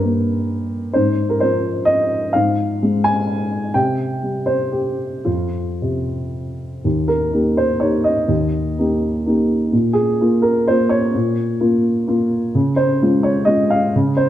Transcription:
Already playing: G2 G3 A#4 C5
0.04 A#3
0.93 G#2 C5
1.30 A#4
1.40 F3 C5
1.85 D#5
2.33 G#2 F5
2.83 G#3
3.04 G#5
3.74 C3 G5
4.23 G3
4.46 C5
4.72 G4
5.25 F2 F4
5.82 C3
6.85 D#2
7.08 A#4
7.33 A#3 D#4 G4
7.57 C5
7.80 A#3 D#4 G4 C#5
8.04 D#5
8.28 D#2
8.79 A#3 D#4 G4
9.26 A#3 D#4 G4
9.73 A#2
9.93 G#4
10.21 A#3 F4
10.42 A#4
10.68 A#3 F4 C5
10.89 C#5
11.15 A#2
11.61 A#3 F4
12.08 A#3 F4
12.55 C#3
12.76 C5
13.02 G#3 C#4 F4
13.23 C#5
13.45 G#3 C#4 F4 D#5
13.70 F5
13.96 C#3
14.17 C5

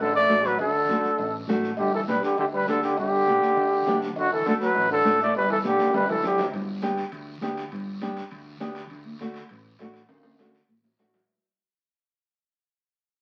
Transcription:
0.00 A1 D3 A4
0.16 A3 D5
0.28 A1 A3 D4 F#4, high conga, low timbale, short guiro
0.44 F#3 B4, short guiro
0.58 D2 D3 A4, cowbell, long guiro
0.89 F#2 A3 D4 F#4, high conga, short guiro
1.04 short guiro
1.18 A1, cowbell, long guiro
1.48 A1 A3 D4 F#4, high conga, low conga, short guiro
1.64 short guiro
1.77 G1 D3 G4, cowbell, long guiro
1.94 E3 A4
2.07 B1 G3 B3 D4 G4 B4, high conga, short guiro
2.23 D3 G4, short guiro
2.37 D2 D3 G4, cowbell, long guiro
2.53 G3 B4
2.67 D2 D3 B3 D4 G4 A4, high conga, short guiro
2.83 D3 G4, short guiro
2.97 G1 D3 G4, cowbell, long guiro
3.27 B1 B3 D4 G4, high conga, short guiro
3.41 high conga, short guiro
3.56 D2, cowbell, long guiro
3.86 D2 B3 D4 G4, high conga, low conga, low timbale, short guiro
4.02 short guiro
4.16 D2 D3 F#4, cowbell, long guiro
4.32 E3 A4
4.46 F#2 D3 A3 D4 F#4 A4, high conga, short guiro
4.60 F#3 B4, high conga, short guiro
4.75 A1, cowbell, long guiro
4.90 D3 A4
5.04 A1 A3 D4 F#4, high conga, low timbale, short guiro
5.20 A3 D5, short guiro
5.35 G1 G3 B4, cowbell, long guiro
5.50 E3 A4
5.64 B1 D3 B3 D4 G4, high conga, short guiro
5.79 high conga, high timbale, short guiro
5.93 D2 G3 B4, cowbell, high conga, high timbale, long guiro
6.08 E3 A4, low conga, low timbale
6.22 D2 D3 B3 D4 E4 G4, low conga, short guiro
6.38 low conga, low timbale, short guiro
6.53 G1, high timbale, long guiro
6.82 B3 D4 G4, high conga, high timbale, short guiro
6.97 high timbale, short guiro
7.12 D2, high timbale, long guiro
7.41 D2 B3 D4 G4, high conga, high timbale, short guiro
7.57 high timbale, short guiro
7.72 G1, high timbale, long guiro
8.01 B3 D4 G4, high conga, high timbale, short guiro
8.17 high timbale, short guiro
8.31 D2, high timbale, long guiro
8.60 D2 B3 D4 G4, high conga, high timbale, short guiro
8.75 high timbale, short guiro
8.90 D2, high timbale, long guiro
9.05 high conga
9.19 A3 D4 F#4, high conga, high timbale, short guiro
9.34 high timbale, short guiro
9.49 A1, high timbale, long guiro
9.79 A1 A3 D4 F#4, high conga, high timbale, low timbale, short guiro
9.94 high timbale, short guiro
10.09 D2, high timbale, long guiro
10.23 high conga, high timbale
10.39 A3 D4 F#4, high conga, high timbale, short guiro
10.55 short guiro
10.69 A1, high conga, long guiro
10.84 high conga, low timbale
10.99 A1 A3 D4 F#4, low timbale, short guiro
11.13 low conga, low timbale, short guiro

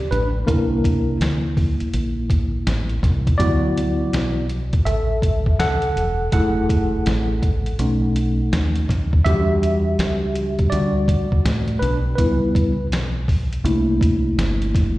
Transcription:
Already playing: D5
0.11 A1 D4 B4, closed hi-hat
0.46 C2 A#3 D4 E4 A#4, kick, closed hi-hat
0.84 kick, closed hi-hat
1.21 D2, snare, closed hi-hat
1.57 kick, open hi-hat
1.80 muted fingered electric bass stroke, closed hi-hat
1.94 A#1, closed hi-hat
2.30 kick, closed hi-hat
2.67 A1, snare, closed hi-hat
2.89 closed hi-hat
3.03 C2, kick, snare, closed hi-hat
3.27 kick, closed hi-hat
3.38 D2 F#3 B3 E4 F#4 D5, kick, closed hi-hat
3.77 closed hi-hat
4.13 B1, snare, closed hi-hat
4.50 closed hi-hat
4.73 kick, closed hi-hat
4.85 A1 A4 E5, closed hi-hat
5.22 kick, closed hi-hat
5.46 kick
5.59 C#2 A4 F#5, snare, closed hi-hat
5.82 closed hi-hat
5.96 E1, closed hi-hat
6.32 F#1 A3 E4 G#4 A4 F#5, kick, closed hi-hat
6.69 kick, closed hi-hat
7.06 A1, snare, closed hi-hat
7.43 kick, closed hi-hat
7.66 closed hi-hat
7.79 B1 A3 C#4 D#4, closed hi-hat
8.16 closed hi-hat
8.53 D#2, snare, closed hi-hat
8.76 closed hi-hat
8.89 D#2, kick, snare, closed hi-hat
9.13 kick
9.25 E2 G3 D4 F#4 G4 E5, kick, closed hi-hat
9.63 closed hi-hat
9.99 C#2, snare, closed hi-hat
10.35 closed hi-hat
10.59 kick, closed hi-hat
10.70 D2 G3 D4 F#4 D5, closed hi-hat
11.08 kick, closed hi-hat
11.32 kick
11.45 A2, snare, closed hi-hat
11.68 closed hi-hat
11.79 B1 D4 B4, closed hi-hat
12.15 C#2 G3 B3 E4 B4, kick, closed hi-hat
12.55 kick, closed hi-hat
12.91 B1, snare, closed hi-hat
13.28 kick, open hi-hat
13.53 closed hi-hat
13.64 C2 A3 A#3 D4 E4, closed hi-hat
14.01 kick, closed hi-hat
14.38 G1, snare, closed hi-hat
14.62 closed hi-hat
14.75 kick, snare, closed hi-hat

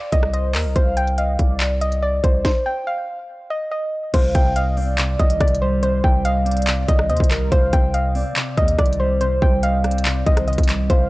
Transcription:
Already playing: D5
0.12 C2 D#5, kick, closed hi-hat
0.23 cross-stick
0.33 C5 D#5, closed hi-hat
0.55 D#2 A#4, clap, open hi-hat
0.65 C2
0.76 C2 C5 F5, kick, closed hi-hat
0.97 G5, closed hi-hat
1.07 closed hi-hat
1.18 D#5 F5, closed hi-hat
1.39 C2 D5, kick, closed hi-hat
1.60 clap, closed hi-hat
1.81 D#5, closed hi-hat
1.92 closed hi-hat
2.02 D5
2.24 C2 C5, kick, closed hi-hat
2.45 C5, kick, snare
2.66 G5
2.87 F5
3.50 D#5
3.71 D#5
4.14 C2 C3 C5 F5, kick, closed hi-hat, crash
4.35 C2 G5, kick, closed hi-hat
4.56 D#5 F5, closed hi-hat
4.77 C4 D5, open hi-hat
4.98 C3, clap, closed hi-hat
5.19 C2 D#3 D#5, kick, closed hi-hat
5.30 closed hi-hat
5.40 C2 C3 D5, kick, cross-stick, closed hi-hat
5.48 closed hi-hat
5.55 closed hi-hat
5.62 G3 C5
5.83 C3 C5, closed hi-hat
6.04 C2 G5, kick
6.25 D#5 F5, closed hi-hat
6.45 C4 D5, closed hi-hat
6.51 closed hi-hat
6.57 closed hi-hat
6.62 closed hi-hat
6.67 C3, clap, closed hi-hat
6.88 C2 D#3 D#5, kick, closed hi-hat
6.99 cross-stick
7.09 D#2 C3 C5 D#5, closed hi-hat
7.17 C2, kick, closed hi-hat
7.24 closed hi-hat
7.31 G3 A#4, clap, closed hi-hat
7.52 C2 C3 C5 F5, kick, closed hi-hat
7.73 C2 G5, kick, closed hi-hat
7.94 D#5 F5, closed hi-hat
8.15 C4 D5, open hi-hat
8.36 C3, clap, closed hi-hat
8.57 D#2 D#3 D#5, kick, closed hi-hat
8.68 closed hi-hat
8.79 C2 C3 D5, kick, cross-stick, closed hi-hat
8.86 closed hi-hat
8.93 closed hi-hat
9.00 G3 C5
9.21 C3 C5, closed hi-hat
9.42 C2 G5, kick
9.63 D#5 F5, closed hi-hat
9.84 C4 D5, cross-stick, closed hi-hat
9.91 closed hi-hat
9.98 closed hi-hat
10.05 C3, clap, closed hi-hat
10.26 C2 D#3 C5 D#5, kick, closed hi-hat
10.37 cross-stick, closed hi-hat
10.47 C3 D#5, closed hi-hat
10.53 closed hi-hat
10.58 C2, kick, closed hi-hat
10.63 closed hi-hat
10.69 G3, clap, closed hi-hat
10.90 C2 C3 C5 F5, kick, closed hi-hat

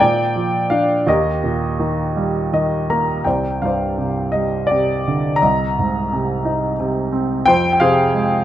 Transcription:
0.00 A#2 D5 G5
0.36 F3
0.70 D4 F5
1.07 D#2 G4 A#4 D#5
1.44 A#2
1.79 D#3
2.16 G3
2.53 D#3 D#5
2.90 A#3 A#5
3.24 C2 C5 D5 G5
3.62 G2 C5 D5 F5
3.98 C3
4.32 G3 D#5
4.67 G4 D5
4.71 C3
5.08 D3
5.36 A#5
5.42 C2 D#5
5.79 G#2
6.13 C3
6.45 D#4
6.80 C3
7.12 C4
7.46 F2 C5 G5
7.73 G5
7.80 C3 G#4 C5 F5
8.14 G#3

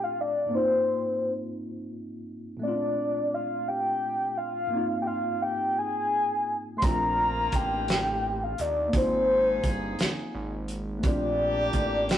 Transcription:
Already playing: A#2 A3 C4 D4 F4
0.04 F5
0.21 D5
0.46 G#2 A#3
0.51 C4 D#4 C5
0.57 F4
2.57 A#2 A3
2.62 C4 C#4 D5
2.67 D4 F4
3.34 F5
3.68 G5
4.38 F5
4.67 G#2 A#3
4.73 C4 D#4
4.78 F4
5.02 G5
5.07 F5
5.42 G5
5.78 G#5
6.77 A3 C4 C6
6.82 A#1 A#3 D4 F4 A#5, kick, closed hi-hat
6.88 F4
7.52 A1 G5, kick, closed hi-hat
7.88 snare, closed hi-hat
8.44 F5
8.58 D#2 D5, closed hi-hat
8.88 A#3 C4
8.93 G#1 D#4 F4 G#4 C5, kick, closed hi-hat
8.98 F4
9.63 G1, kick, closed hi-hat
9.99 G#1, snare, closed hi-hat
10.34 G#1
10.68 closed hi-hat
10.98 A3 C4
11.03 A#1 A#3 D4 G4 D5, kick, closed hi-hat
11.09 F4
11.73 A1, kick, closed hi-hat
12.09 G5, snare, closed hi-hat

